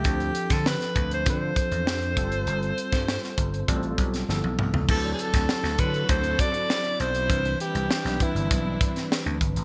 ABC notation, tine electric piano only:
X:1
M:4/4
L:1/16
Q:1/4=99
K:Gmix
V:1 name="Tine electric piano"
[F,CDA]6 z2 [F,CDA]3 z [F,CDA]2 [G,CFA]2- | [G,CFA]4 z4 [G,CFA]3 z [F,_B,=B,EA]3 z | [K:Dmix] [F,CEB] [F,CEd]4 z [F,CEA]6 z4 | [E,CDB] [E,CDB]4 z [E,CDB]6 z4 |]